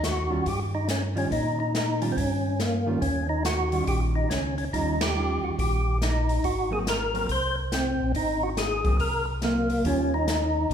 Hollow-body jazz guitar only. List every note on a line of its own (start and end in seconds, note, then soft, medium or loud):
0.29 0.43 D#3 medium
0.29 0.44 G3 medium
0.29 0.44 C#4 medium
0.29 0.44 F4 medium
1.15 1.29 D#3 medium
1.15 1.29 G3 medium
1.15 1.29 C#4 medium
1.15 1.29 F4 medium
2.01 2.15 D#3 medium
2.01 2.15 G3 medium
2.01 2.15 C#4 medium
2.01 2.15 F4 medium
2.86 3.00 D#3 medium
2.86 3.00 G3 medium
2.86 3.00 C#4 medium
2.86 3.00 F4 medium
3.72 4.27 D#3 soft
3.72 4.27 G3 soft
3.72 4.27 C#4 soft
3.72 4.27 F4 soft
4.73 4.97 D#3 soft
4.73 4.98 G3 soft
4.73 4.98 C#4 soft
4.73 4.98 F4 soft
5.14 5.79 D#3 soft
5.14 5.80 G3 soft
5.14 5.80 C#4 soft
5.14 5.80 F4 medium
6.70 6.84 F#3 medium
6.70 6.85 A#3 medium
6.70 6.85 C4 medium
7.14 7.27 F#3 medium
7.14 7.27 A#3 medium
7.14 7.28 C4 medium
8.85 8.98 F#3 medium
8.85 8.98 A#3 medium
8.85 8.99 C4 medium
9.42 9.85 F#3 soft
9.42 9.85 A#3 soft
9.42 9.85 C4 soft
9.84 10.09 D#3 soft
9.84 10.10 G3 medium
9.84 10.10 C#4 medium
9.84 10.10 F4 medium